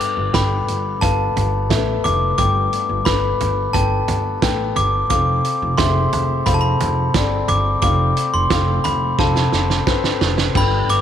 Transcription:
Already playing: grand piano G2 B3 A4 G5, glockenspiel D6
0.00 closed hi-hat
0.17 upright bass G1
0.33 upright bass G1, grand piano B3 A4 G5, glockenspiel B5, kick, snare, closed hi-hat
0.68 upright bass G1, closed hi-hat
1.01 upright bass G1, grand piano B3 A4 F5, glockenspiel A5, kick, closed hi-hat
1.36 upright bass G1, closed hi-hat, floor tom
1.70 upright bass A1, grand piano A3 A4 E5, kick, snare, closed hi-hat
1.76 grand piano B3
2.04 upright bass F1, glockenspiel D6, closed hi-hat, floor tom
2.38 upright bass G1, grand piano G2 B3 A4 G5, glockenspiel D6, kick, closed hi-hat
2.73 closed hi-hat
2.89 upright bass G1
3.05 upright bass G1, grand piano B3 A4 B4, glockenspiel B5, kick, snare, closed hi-hat
3.40 upright bass G1, closed hi-hat, floor tom
3.73 upright bass G1, grand piano B3 A4 G5, glockenspiel A5, kick, closed hi-hat
4.08 upright bass G1, closed hi-hat, floor tom
4.42 upright bass A1, grand piano B3 A4 G5, kick, snare, closed hi-hat
4.76 upright bass G1, glockenspiel D6, closed hi-hat, floor tom
5.09 upright bass F1, grand piano C4 A4 F5, glockenspiel D6, kick, closed hi-hat
5.44 closed hi-hat
5.62 upright bass F1
5.78 upright bass F1, grand piano C4 G#4 E5, glockenspiel C6, kick, snare, closed hi-hat
5.85 grand piano A4
6.13 upright bass F1, closed hi-hat, floor tom
6.46 upright bass F1, grand piano C4 A4 F5, glockenspiel B5, kick, closed hi-hat
6.54 glockenspiel A5
6.61 glockenspiel B5
6.80 upright bass F1, closed hi-hat, floor tom
7.14 upright bass G1, grand piano C4 A4 D5, kick, snare, closed hi-hat
7.48 upright bass G1, glockenspiel D6, closed hi-hat, floor tom
7.82 upright bass F1, grand piano C4 A4 F5, glockenspiel D6, kick, closed hi-hat
8.17 closed hi-hat
8.34 upright bass F1, glockenspiel C6
8.50 upright bass F1, grand piano C4 A4 F5, kick, snare, closed hi-hat
8.84 upright bass F1, glockenspiel B5, closed hi-hat, floor tom
9.19 upright bass F1, grand piano C4 A4 F5, glockenspiel A5, kick, snare
9.36 snare
9.52 upright bass F1, snare
9.70 snare
9.87 upright bass G1, grand piano C4 A4 B4, kick, snare
10.04 snare
10.21 upright bass F1, snare
10.38 snare
10.54 upright bass G1, grand piano G2 B3 A4 G5, glockenspiel B5, kick, crash
10.89 upright bass G1, glockenspiel D6, closed hi-hat

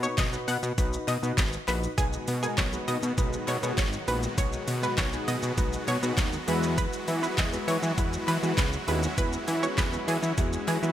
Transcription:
0.03 synth keys D#4 F#4 B4, synth pluck C#5, shaker
0.18 analog synth bass B1, synth pluck D#5, kick, snare, clap, closed hi-hat, shaker
0.32 synth keys D#4 F#4 B4, shaker
0.48 analog synth bass B2, synth pluck F#5, open hi-hat, shaker
0.63 analog synth bass B2, shaker
0.78 analog synth bass B1, synth keys D#4 F#4 B4, kick, closed hi-hat, shaker
0.93 shaker
1.08 analog synth bass B2, synth pluck D#5, clap, open hi-hat, shaker
1.23 analog synth bass B2, synth keys D#4 F#4 B4, shaker
1.38 analog synth bass G#1, kick, snare, clap, closed hi-hat, shaker
1.53 shaker
1.68 analog synth bass A#1, synth keys D#4 F#4 B4, synth pluck B4, clap, open hi-hat, shaker
1.83 shaker
1.98 analog synth bass B1, supersaw synth D#3 F#3 G#3 B3 F#4, synth keys G#3 B3 D#4 F#4 B4, synth pluck G#4, kick, closed hi-hat, shaker
2.13 shaker
2.28 analog synth bass B2, open hi-hat, shaker
2.43 synth keys G#3 B3 D#4 F#4 A#4, synth pluck G#4, shaker
2.58 analog synth bass B1, synth pluck C#5, kick, snare, clap, closed hi-hat, shaker
2.73 synth keys G#3 B3 D#4 F#4 B4, shaker
2.88 analog synth bass B2, synth pluck D#5, open hi-hat, shaker
3.03 analog synth bass B2, shaker
3.18 analog synth bass B1, synth keys G#3 B3 D#4 F#4 B4, kick, closed hi-hat, shaker
3.33 shaker
3.48 analog synth bass B2, synth pluck C#5, clap, open hi-hat, shaker
3.63 analog synth bass B2, synth keys G#3 B3 D#4 F#4 C#5, shaker
3.78 analog synth bass G#1, synth pluck C#5, kick, snare, clap, closed hi-hat, shaker
3.93 shaker
4.08 analog synth bass A#1, synth keys G#3 B3 D#4 F#4 B4, synth pluck B4, open hi-hat, shaker
4.23 shaker
4.38 analog synth bass B1, synth keys G#3 B3 D#4 F#4 C#5, synth pluck C#5, kick, closed hi-hat, shaker
4.53 shaker
4.68 analog synth bass B2, open hi-hat, shaker
4.83 synth keys G#3 B3 D#4 F#4 B4, synth pluck B4, shaker
4.98 analog synth bass B1, synth pluck C#5, kick, snare, clap, closed hi-hat, shaker
5.13 synth keys G#3 B3 D#4 F#4 G#4, shaker
5.28 analog synth bass B2, synth pluck D#5, open hi-hat, shaker
5.43 analog synth bass B2, shaker
5.58 analog synth bass B1, synth keys G#3 B3 D#4 F#4 B4, kick, closed hi-hat, shaker
5.73 shaker
5.88 analog synth bass B2, synth pluck C#5, clap, open hi-hat, shaker
6.02 analog synth bass B2, synth keys G#3 B3 D#4 F#4 B4, shaker
6.18 analog synth bass D#2, kick, snare, clap, closed hi-hat, shaker
6.33 shaker
6.48 analog synth bass E2, synth keys G#3 B3 E4 F#4 B4, supersaw synth E4, open hi-hat, shaker
6.63 shaker
6.78 synth pluck B4, kick, closed hi-hat, shaker
6.93 shaker
7.08 analog synth bass E3, open hi-hat, shaker
7.22 synth keys G#3 B3 E4 F#4 B4, synth pluck B4, shaker
7.38 analog synth bass E2, synth pluck D#5, kick, snare, clap, closed hi-hat, shaker
7.53 synth keys G#3 B3 E4 F#4 B4, shaker
7.68 analog synth bass E3, synth pluck C#5, open hi-hat, shaker
7.83 analog synth bass E3, shaker
7.98 analog synth bass E2, synth keys G#3 B3 E4 F#4 B4, kick, closed hi-hat, shaker
8.13 shaker
8.28 analog synth bass E3, synth pluck B4, clap, open hi-hat, shaker
8.43 analog synth bass E3, synth keys G#3 B3 E4 F#4 B4, shaker
8.58 analog synth bass C#2, synth pluck B4, kick, snare, clap, closed hi-hat, shaker
8.73 shaker
8.88 analog synth bass D#2, synth keys G#3 B3 E4 F#4 G#4, supersaw synth C#4, synth pluck B4, open hi-hat, shaker
9.03 shaker
9.18 analog synth bass E2, synth keys G#3 B3 E4 F#4 B4, synth pluck B4, kick, closed hi-hat, shaker
9.33 shaker
9.48 analog synth bass E3, open hi-hat, shaker
9.63 synth keys G#3 B3 E4 F#4 B4, synth pluck C#5, shaker
9.78 analog synth bass E2, synth pluck B4, kick, snare, clap, closed hi-hat, shaker
9.93 synth keys G#3 B3 E4 F#4 B4, shaker
10.08 analog synth bass E3, synth pluck G#4, open hi-hat, shaker
10.23 analog synth bass E3, shaker
10.38 analog synth bass E2, synth keys G#3 B3 E4 F#4 G#4, kick, closed hi-hat, shaker
10.53 shaker
10.68 analog synth bass E3, synth pluck G#4, clap, open hi-hat, shaker
10.82 analog synth bass E3, synth keys G#3 B3 E4 F#4 B4, shaker

